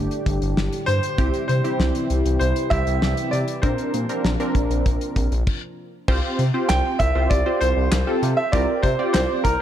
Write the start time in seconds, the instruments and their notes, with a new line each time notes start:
Already playing: analog synth pad A2 D3 G3 D4 G4, analog polysynth A3 D4 G4
0.11 closed hi-hat
0.26 analog synth bass G1, kick, closed hi-hat
0.42 analog synth bass G1, closed hi-hat
0.57 analog synth bass G1, snare
0.73 closed hi-hat
0.86 analog synth bass G2, grand piano C5, closed hi-hat
1.03 closed hi-hat
1.18 analog synth bass C2, analog synth pad C3 E3 E4, analog polysynth C4 E4 G4, kick, closed hi-hat
1.34 closed hi-hat
1.48 analog synth bass C3, grand piano C5, closed hi-hat
1.64 analog polysynth C4 E4 G4, closed hi-hat
1.79 analog synth bass C2, snare
1.95 closed hi-hat
2.10 analog synth bass C2, closed hi-hat
2.26 analog synth bass C2, closed hi-hat
2.39 analog synth bass C2, grand piano C5, closed hi-hat
2.56 closed hi-hat
2.70 analog synth bass C2, analog polysynth C4 E4 G4, grand piano E5, kick, closed hi-hat
2.87 analog synth bass C2, closed hi-hat
3.02 analog synth bass C2, snare
3.17 closed hi-hat
3.31 analog synth bass C3, grand piano D5, closed hi-hat
3.48 closed hi-hat
3.62 analog synth bass A#1, analog synth pad F3 A#3 D4 F4, analog polysynth C4 D4 A#4, grand piano C5, kick, closed hi-hat
3.78 closed hi-hat
3.94 analog synth bass A#2, closed hi-hat
4.09 analog polysynth C4 D4 A#4, closed hi-hat
4.24 analog synth bass A#1, snare
4.40 analog polysynth C4 D4 A#4, closed hi-hat
4.55 analog synth bass A#1, kick, closed hi-hat
4.70 analog synth bass A#1, closed hi-hat
4.86 analog synth bass A#1, kick, closed hi-hat
5.01 closed hi-hat
5.16 analog synth bass A#1, kick, closed hi-hat
5.32 analog synth bass A#1, closed hi-hat
5.47 kick, crash
6.08 analog synth bass C2, analog polysynth C4 F4 G4 C5, kick, crash
6.39 analog synth bass C3, closed hi-hat
6.54 analog polysynth C4 F4 G4 C5
6.69 analog synth bass C2, grand piano G5, snare, clap, closed hi-hat
6.99 analog synth bass C2, grand piano E5, kick, closed hi-hat
7.15 analog synth bass C2, analog polysynth C4 F4 G4 C5
7.30 analog synth bass C2, grand piano D5, kick, closed hi-hat
7.46 analog polysynth C4 F4 G4 C5
7.61 analog synth bass C2, grand piano C5, closed hi-hat
7.77 analog synth bass C2
7.92 analog synth bass C2, snare, clap, closed hi-hat
8.07 analog polysynth C4 F4 G4 A4
8.22 analog synth bass C3, closed hi-hat
8.37 grand piano E5
8.52 analog synth bass C2, analog polysynth C4 F4 G4 A#4, grand piano D5, kick, closed hi-hat
8.83 analog synth bass C3, grand piano C5, kick, closed hi-hat
8.99 analog polysynth C4 F4 G4 D5
9.13 analog synth bass C2, grand piano C5, snare, clap, closed hi-hat
9.44 analog synth bass C2, grand piano A#4, kick, closed hi-hat